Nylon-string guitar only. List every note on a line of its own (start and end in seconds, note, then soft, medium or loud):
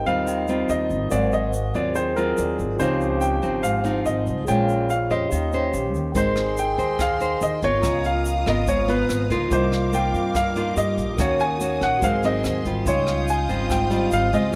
0.00 0.25 G#2 medium
0.06 0.45 G3 medium
0.06 0.45 C4 medium
0.06 0.46 F4 medium
0.27 1.09 D#3 medium
0.48 1.08 G3 soft
0.48 1.08 C4 medium
0.48 1.09 F4 medium
1.11 1.93 G#2 medium
1.11 1.53 F#3 soft
1.11 1.53 C4 medium
1.74 2.13 F#3 medium
1.74 2.13 C4 medium
1.74 2.13 F4 medium
1.96 2.78 D#3 medium
2.16 2.76 F#3 medium
2.16 2.77 C4 medium
2.16 2.77 F4 medium
2.80 3.62 C#3 medium
2.80 3.39 F3 medium
2.80 3.40 C4 medium
2.80 3.40 D#4 medium
3.42 3.81 F3 soft
3.42 3.81 C4 medium
3.42 3.81 D#4 medium
3.63 4.45 G#2 medium
3.84 4.44 F3 medium
3.84 4.44 C4 medium
3.84 4.44 D#4 medium
4.47 5.29 A#2 medium
4.47 4.89 G#3 medium
4.47 4.89 C#4 medium
4.47 4.89 F4 medium
5.10 5.49 C#4 medium
5.10 5.49 G4 medium
5.10 5.49 C5 medium
5.31 6.13 D#3 medium
5.53 6.12 C#4 medium
5.53 6.13 G4 medium
5.53 6.13 C5 medium
6.15 6.97 G#3 medium
6.15 6.75 D#4 soft
6.15 6.75 C5 medium
6.78 7.17 D#4 medium
6.78 7.17 C5 medium
6.99 7.81 D#3 medium
7.20 7.59 D#4 medium
7.20 7.59 C5 medium
7.63 8.43 B3 medium
7.63 8.43 F4 medium
7.63 8.44 A#4 medium
7.83 8.65 C#3 medium
8.47 8.85 B3 medium
8.47 8.85 F4 medium
8.47 8.85 A#4 medium
8.67 9.49 G#2 medium
8.88 9.27 B3 medium
8.88 9.27 F4 medium
9.30 9.91 A#3 medium
9.30 9.92 D#4 medium
9.30 9.92 F4 medium
9.51 10.33 C3 medium
9.92 10.52 A#3 soft
9.92 10.52 D#4 medium
9.92 10.53 F4 medium
10.35 11.17 G2 medium
10.56 11.15 A#3 medium
10.56 11.16 D#4 medium
10.56 11.16 F4 medium
11.19 12.01 D#3 medium
11.19 11.57 A#3 medium
11.19 11.57 C#4 medium
11.19 11.58 F#4 medium
11.60 12.01 A#3 medium
11.60 12.01 C#4 medium
11.60 12.01 F#4 medium
12.03 12.84 G#2 medium
12.03 12.15 F#3 medium
12.03 12.15 C4 medium
12.03 12.16 D#4 medium
12.23 12.62 F#3 medium
12.23 12.62 C4 medium
12.23 12.63 D#4 medium
12.66 13.25 G3 medium
12.66 13.25 F4 medium
12.86 13.68 C#3 medium
13.48 13.87 G3 soft
13.48 13.88 C4 soft
13.48 13.88 F4 medium
13.69 14.51 G#2 medium
13.90 14.29 G3 medium
13.90 14.29 C4 medium
13.90 14.29 F4 medium
14.33 14.55 G#3 medium
14.33 14.55 C4 medium
14.33 14.55 F4 medium